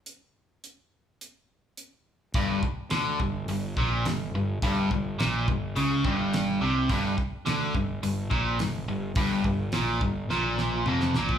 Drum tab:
HH |x---x---x---x---|o---o---o---o---|o---o---o---o---|o---o---o---o---|
SD |----------------|----o-------o---|----o-------o---|----o-------o---|
T2 |----------------|----------------|----------------|----------------|
BD |----------------|o-o---o---o-----|o-o---o---o-----|o-o---o---o-----|

HH |o---o-----------|
SD |----o---o-o--oo-|
T2 |------------o---|
BD |o-o---o--------o|